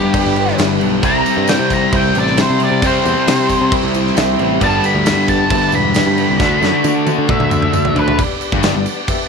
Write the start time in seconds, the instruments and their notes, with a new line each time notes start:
Already playing: overdriven electric guitar G2 D3 G3, twelve-string acoustic guitar G3 B3 D4 G4, tonewheel organ G3 B3 D4 B4, lead electric guitar G4
0.04 picked electric bass G2
0.13 twelve-string acoustic guitar G2 D3 G3 B3 D4 G4, reed electric piano G4 B4 D5, kick, tambourine, crash
0.25 picked electric bass G1
0.36 twelve-string acoustic guitar G3 B3 D4 G4, crash
0.48 snare
0.58 picked electric bass G1, twelve-string acoustic guitar G3 B3 D4, reed electric piano G4 B4 E5, snare, tambourine, crash
0.62 twelve-string acoustic guitar G4
0.80 picked electric bass B1, overdriven electric guitar G2 D3 G3, crash
1.02 picked electric bass C2, overdriven electric guitar C3 G3, twelve-string acoustic guitar C3 G3 C4 E4 G4, tonewheel organ G3 C4 E4 C5, reed electric piano G4 C5 E5, lead electric guitar A#5, kick, tambourine, crash
1.06 overdriven electric guitar C4
1.25 twelve-string acoustic guitar C4 E4 G4, tambourine, crash
1.37 picked electric bass G2
1.48 reed electric piano G4 C5 D5, lead electric guitar G5, snare, tambourine, crash
1.59 picked electric bass C3
1.70 twelve-string acoustic guitar C4 E4 G4, lead electric guitar A#5, kick, tambourine, crash
1.92 picked electric bass C2, twelve-string acoustic guitar C3 G3 C4 E4 G4, reed electric piano G4 C5 E5, lead electric guitar G5, kick, tambourine, crash
2.14 picked electric bass A1, twelve-string acoustic guitar C4 E4 G4, tambourine, crash
2.19 lead electric guitar D5
2.27 snare
2.37 twelve-string acoustic guitar G3 C4 E4 G4, reed electric piano G4 C5 G5, snare, tambourine, crash
2.42 lead electric guitar C5
2.50 picked electric bass C3
2.59 overdriven electric guitar G3 C4, tambourine, crash
2.63 overdriven electric guitar C3, lead electric guitar D5
2.71 picked electric bass C3
2.82 twelve-string acoustic guitar C3 G3 C4 E4 G4, overdriven electric guitar C3 G3, reed electric piano G4 C5 E5, kick, tambourine, crash
2.86 overdriven electric guitar C4, lead electric guitar C5
3.04 picked electric bass E2, twelve-string acoustic guitar C4 E4 G4, tambourine, crash
3.27 picked electric bass C3, reed electric piano G4 C5 E5, snare, tambourine, crash
3.49 kick, tambourine, crash
3.61 picked electric bass C3
3.71 twelve-string acoustic guitar C3 G3 C4 E4 G4, reed electric piano G4 C5 E5, kick, tambourine, crash
3.83 picked electric bass C2
3.94 twelve-string acoustic guitar C4 E4 G4, tambourine, crash
4.07 snare
4.15 picked electric bass C2, twelve-string acoustic guitar G3 C4 E4 G4, reed electric piano G4 C5 E5, snare, tambourine, crash
4.38 picked electric bass A1, overdriven electric guitar C3 G3 C4, tambourine, crash
4.60 picked electric bass G1, overdriven electric guitar G2 D3, twelve-string acoustic guitar G2 D3 G3 B3 D4 G4, tonewheel organ C4 D#4 G#4 D#5, reed electric piano G4 B4 D5, lead electric guitar A5, kick, tambourine, crash
4.65 overdriven electric guitar G3
4.77 tonewheel organ B3 D4 G4 D5
4.83 twelve-string acoustic guitar G3 B3 D4 G4, lead electric guitar B5, tambourine, crash
4.95 picked electric bass D2
5.05 reed electric piano G4 B4 D5, snare, tambourine, crash
5.17 picked electric bass G2
5.28 lead electric guitar A5, kick, tambourine, crash
5.50 picked electric bass G1, twelve-string acoustic guitar G2 D3 G3 B3 D4 G4, reed electric piano G4 B4 E5, kick, tambourine, crash
5.72 picked electric bass E1, twelve-string acoustic guitar G3 B3 D4 G4, lead electric guitar B5, tambourine, crash
5.94 twelve-string acoustic guitar G3 B3 D4, reed electric piano G4 B4 E5, snare, tambourine, crash
5.98 twelve-string acoustic guitar G4
6.07 picked electric bass G2
6.18 overdriven electric guitar G2 D3 G3, tambourine, crash
6.29 picked electric bass C2
6.39 picked electric bass D2, overdriven electric guitar D3 A3, twelve-string acoustic guitar D3 A3 D4 F#4 A4, tonewheel organ A3 D4 F#4 D5, reed electric piano F#4 A4 D5, kick, snare, tambourine
6.43 overdriven electric guitar D4
6.61 picked electric bass F#2, twelve-string acoustic guitar D4 F#4 A4, snare, tambourine
6.84 picked electric bass D3, reed electric piano F#4 A4 D5, high tom, tambourine
7.06 twelve-string acoustic guitar D4 F#4 A4, high tom, tambourine
7.18 picked electric bass D3
7.27 twelve-string acoustic guitar D3 A3 D4 F#4 A4, reed electric piano F#4 A4 D5, lead electric guitar E5, kick, mid tom
7.40 picked electric bass D2, mid tom
7.50 twelve-string acoustic guitar D4 F#4 A4, mid tom, tambourine
7.62 mid tom
7.72 picked electric bass D2, twelve-string acoustic guitar A3 D4 F#4 A4, reed electric piano F#4 A4 D5, mid tom, tambourine
7.85 floor tom
7.95 picked electric bass D2, overdriven electric guitar D3 A3 D4, lead electric guitar B4, floor tom, tambourine
8.08 floor tom
8.18 tonewheel organ B3 D4 G4 D5, reed electric piano G4 B4 D5, kick, crash
8.41 tambourine, crash
8.52 picked electric bass G1, overdriven electric guitar G2, kick
8.63 reed electric piano G4 B4 D5, snare, tambourine, crash
8.74 picked electric bass G1, overdriven electric guitar G2
8.86 tambourine, crash
9.08 reed electric piano G4 B4 E5, kick, tambourine, crash